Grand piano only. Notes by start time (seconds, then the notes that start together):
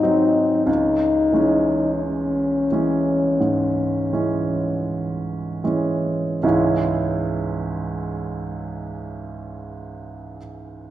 Already playing: G#2 F#3 C4 D#4
0.02 F#3 C4 D#4
0.67 C#2
1.32 E3 G#3 C#4
2.71 E3 G#3 C#4
3.40 G#2
4.12 E3 G#3 C#4
5.64 E3 G#3 C#4
6.43 C#2 G#2 E3 G#3 C#4 E4